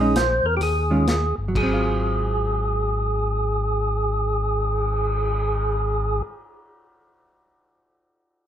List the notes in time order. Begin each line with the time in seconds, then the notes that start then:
Already playing: A#1 G#4
0.00 G#3 C#4 D#4
0.16 C5, snare, closed hi-hat
0.43 E2 A#4
0.57 D#2 G4, open hi-hat
0.63 G#4
0.90 D#3 G#3 C#4 F4
1.07 snare, closed hi-hat
1.38 G1
1.48 F#3
1.55 G#1 G#4, kick, crash
1.63 C4
1.74 F4
1.88 cymbal swell